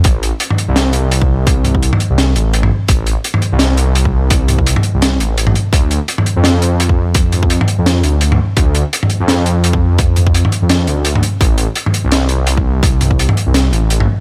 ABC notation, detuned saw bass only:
X:1
M:4/4
L:1/16
Q:"Swing 16ths" 1/4=169
K:Dm
V:1 name="Detuned saw bass" clef=bass
A,,,3 z4 C,,8- C,,- | C,,4- C,, z2 C,,3 A,,,4 z2 | A,,,3 z4 C,,8- C,,- | C,,4- C,, z2 C,,3 A,,,4 z2 |
D,,3 z4 F,,8- F,,- | F,,4- F,, z2 F,,3 D,,4 z2 | D,,3 z4 F,,8- F,,- | F,,4- F,, z2 F,,3 D,,4 z2 |
A,,,3 z4 C,,8- C,,- | C,,4- C,, z2 C,,3 A,,,4 z2 |]